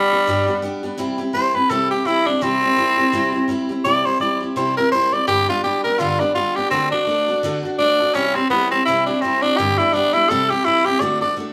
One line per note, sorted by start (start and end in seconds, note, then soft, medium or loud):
0.00 0.13 G3 medium
0.00 0.60 G3 loud
0.00 0.13 B3 medium
0.00 0.13 D4 medium
0.00 0.11 G4 medium
0.13 0.27 G3 soft
0.13 0.27 B3 medium
0.13 0.28 D4 soft
0.13 0.27 G4 medium
0.27 0.48 G2 medium
0.27 0.48 D3 medium
0.27 0.49 G3 medium
0.27 0.48 B3 medium
0.27 0.47 D4 medium
0.27 0.46 G4 medium
0.47 0.61 G3 medium
0.47 0.62 B3 soft
0.47 0.63 D4 medium
0.47 0.63 G4 medium
0.62 0.83 G3 medium
0.62 0.84 B3 medium
0.62 0.83 D4 medium
0.62 0.82 G4 medium
0.83 0.97 G3 soft
0.83 0.98 B3 medium
0.83 0.99 D4 medium
0.83 0.98 G4 medium
0.98 1.19 C3 medium
0.98 1.19 G3 medium
0.98 1.20 C4 medium
0.98 1.18 E4 loud
0.98 1.17 G4 loud
1.18 1.33 C4 medium
1.18 1.34 E4 medium
1.18 1.34 G4 medium
1.33 1.55 G3 medium
1.33 1.55 C4 medium
1.33 1.55 E4 medium
1.33 1.53 G4 medium
1.33 1.57 C5 loud
1.54 1.70 C4 soft
1.54 1.70 E4 soft
1.54 1.69 G4 medium
1.54 1.71 B4 medium
1.70 1.91 C3 medium
1.70 1.91 G3 medium
1.70 1.91 C4 loud
1.70 1.91 E4 medium
1.70 1.89 G4 medium
1.70 1.90 A4 loud
1.91 2.05 C4 soft
1.91 2.07 E4 soft
1.91 2.06 G4 medium
1.91 2.08 G4 medium
2.05 2.26 G3 medium
2.05 2.27 C4 medium
2.05 2.28 E4 loud
2.05 2.27 E4 medium
2.05 2.25 G4 medium
2.26 2.41 C4 soft
2.26 2.44 D4 medium
2.26 2.42 E4 soft
2.26 2.41 G4 medium
2.41 2.62 C3 medium
2.41 2.62 G3 medium
2.41 2.63 C4 medium
2.41 3.46 C4 loud
2.41 2.62 E4 medium
2.41 2.60 G4 medium
2.62 2.76 C4 soft
2.62 2.78 E4 soft
2.62 2.77 G4 medium
2.76 2.98 G3 medium
2.76 2.98 C4 medium
2.76 2.98 E4 medium
2.76 2.96 G4 medium
2.97 3.12 C4 medium
2.97 3.13 E4 medium
2.97 3.13 G4 medium
3.12 3.34 C3 medium
3.12 3.34 G3 loud
3.12 3.34 C4 loud
3.12 3.33 E4 loud
3.12 3.31 G4 loud
3.33 3.48 C4 medium
3.33 3.49 E4 medium
3.33 3.48 G4 medium
3.48 3.69 G3 medium
3.48 3.70 C4 medium
3.48 3.70 E4 medium
3.48 3.68 G4 medium
3.69 3.84 C4 medium
3.69 3.85 E4 medium
3.69 3.84 G4 medium
3.84 4.05 C3 medium
3.84 4.06 G3 medium
3.84 4.06 C4 medium
3.84 4.05 E4 medium
3.84 4.04 G4 medium
3.84 4.07 D5 loud
4.05 4.20 C4 soft
4.05 4.21 E4 medium
4.05 4.20 G4 medium
4.05 4.20 C5 loud
4.20 4.41 G3 medium
4.20 4.42 C4 medium
4.20 4.42 E4 medium
4.20 4.39 G4 medium
4.20 4.41 D5 medium
4.40 4.56 C4 soft
4.40 4.56 E4 soft
4.40 4.56 G4 medium
4.56 4.77 C3 medium
4.56 4.77 G3 medium
4.56 4.78 C4 medium
4.56 4.78 E4 medium
4.56 4.76 G4 medium
4.56 4.76 C5 medium
4.77 4.92 C4 soft
4.77 4.93 E4 soft
4.77 4.92 G4 medium
4.77 4.91 A#4 loud
4.92 5.13 G3 medium
4.92 5.14 C4 medium
4.92 5.13 E4 medium
4.92 5.11 G4 medium
4.92 5.14 C5 loud
5.12 5.29 C4 soft
5.12 5.29 E4 soft
5.12 5.28 G4 medium
5.12 5.27 D5 loud
5.27 5.48 G2 medium
5.27 5.49 D3 medium
5.27 5.49 G3 medium
5.27 5.49 B3 medium
5.27 5.48 D4 medium
5.27 5.48 G4 loud
5.27 5.47 G4 medium
5.48 5.63 G3 soft
5.48 5.64 B3 medium
5.48 5.64 D4 medium
5.48 5.63 F4 loud
5.48 5.64 G4 medium
5.64 5.85 G3 medium
5.64 5.85 B3 medium
5.64 5.85 D4 medium
5.64 5.83 G4 medium
5.84 5.99 G3 soft
5.84 6.00 B3 medium
5.84 6.00 D4 medium
5.84 6.00 G4 medium
5.84 6.01 A#4 medium
5.99 6.20 G2 medium
5.99 6.21 D3 medium
5.99 6.21 G3 medium
5.99 6.21 B3 medium
5.99 6.20 D4 medium
5.99 6.21 F4 medium
5.99 6.19 G4 medium
6.20 6.34 G3 soft
6.20 6.35 B3 medium
6.20 6.34 D4 medium
6.20 6.36 D4 medium
6.20 6.35 G4 medium
6.35 6.56 G3 medium
6.35 6.57 B3 medium
6.35 6.57 D4 medium
6.35 6.57 F4 medium
6.35 6.56 G4 medium
6.55 6.72 B3 medium
6.55 6.71 D4 medium
6.55 6.70 G4 medium
6.55 6.72 G4 medium
6.60 6.71 G3 soft
6.70 6.92 D3 medium
6.70 6.92 A3 medium
6.70 6.91 C4 loud
6.70 6.93 D4 medium
6.70 6.92 F#4 medium
6.70 6.91 A4 medium
6.91 7.57 D4 medium
6.91 7.07 D4 medium
6.91 7.08 F#4 medium
6.91 7.07 A4 medium
7.07 7.28 A3 medium
7.07 7.29 D4 medium
7.07 7.28 F#4 medium
7.07 7.27 A4 medium
7.28 7.43 D4 soft
7.28 7.44 F#4 medium
7.28 7.43 A4 medium
7.43 7.64 D3 medium
7.43 7.64 A3 medium
7.43 7.65 D4 loud
7.43 7.64 F#4 medium
7.43 7.62 A4 loud
7.63 7.79 D4 medium
7.63 7.80 F#4 medium
7.63 7.79 A4 medium
7.78 8.00 A3 medium
7.78 8.16 D4 loud
7.78 8.00 D4 medium
7.78 8.00 F#4 medium
7.78 7.98 A4 medium
8.00 8.15 D4 soft
8.00 8.15 F#4 medium
8.00 8.15 A4 medium
8.14 8.36 C3 medium
8.14 8.36 G3 medium
8.14 8.36 C4 medium
8.14 8.37 C#4 loud
8.14 8.36 E4 medium
8.14 8.34 G4 loud
8.35 8.50 C4 loud
8.35 8.50 C4 soft
8.35 8.51 E4 medium
8.35 8.50 G4 medium
8.50 8.71 G3 medium
8.50 8.71 B3 loud
8.50 8.72 C4 medium
8.50 8.72 E4 medium
8.50 8.70 G4 medium
8.71 8.85 C4 loud
8.71 8.87 C4 soft
8.71 8.87 E4 medium
8.71 8.87 G4 medium
8.85 9.08 C3 medium
8.85 9.08 G3 loud
8.85 9.08 C4 medium
8.85 9.06 E4 loud
8.85 9.08 E4 medium
8.90 9.06 G4 medium
9.06 9.23 D4 medium
9.06 9.23 E4 soft
9.06 9.22 G4 medium
9.11 9.22 C4 soft
9.21 9.43 G3 medium
9.21 9.43 C4 loud
9.21 9.44 C4 medium
9.21 9.43 E4 medium
9.21 9.41 G4 medium
9.42 9.59 C4 medium
9.42 9.59 D4 loud
9.42 9.59 E4 soft
9.42 9.58 G4 medium
9.57 9.79 G2 medium
9.57 9.79 D3 medium
9.57 9.80 G3 medium
9.57 9.80 B3 medium
9.57 9.79 D4 medium
9.57 9.79 G4 loud
9.57 9.78 G4 medium
9.78 9.94 B3 medium
9.78 9.95 D4 medium
9.78 9.95 E4 loud
9.78 9.94 G4 medium
9.82 9.92 G3 soft
9.94 10.15 G3 medium
9.94 10.15 B3 medium
9.94 10.15 D4 loud
9.94 10.14 D4 medium
9.94 10.12 G4 medium
10.13 10.30 G3 soft
10.13 10.30 B3 soft
10.13 10.30 D4 medium
10.13 10.31 E4 loud
10.13 10.29 G4 medium
10.30 10.51 C3 medium
10.30 10.51 G3 medium
10.30 10.51 C4 medium
10.30 10.50 E4 medium
10.30 10.49 G4 medium
10.30 10.51 A4 loud
10.50 10.65 C4 soft
10.50 10.66 E4 medium
10.50 10.66 G4 loud
10.50 10.65 G4 medium
10.65 10.86 G3 medium
10.65 10.87 C4 medium
10.65 10.87 E4 loud
10.65 10.86 E4 medium
10.65 10.85 G4 medium
10.85 11.01 C4 soft
10.85 11.02 E4 medium
10.85 11.02 G4 loud
10.85 11.01 G4 medium
11.00 11.22 D3 medium
11.00 11.22 A3 medium
11.00 11.22 D4 medium
11.00 11.21 F#4 medium
11.00 11.20 A4 medium
11.00 11.21 D5 loud
11.21 11.36 D4 medium
11.21 11.37 F#4 medium
11.21 11.37 A4 medium
11.21 11.36 D5 loud
11.37 11.53 A3 medium
11.37 11.53 D4 medium
11.37 11.53 F#4 medium
11.37 11.53 A4 medium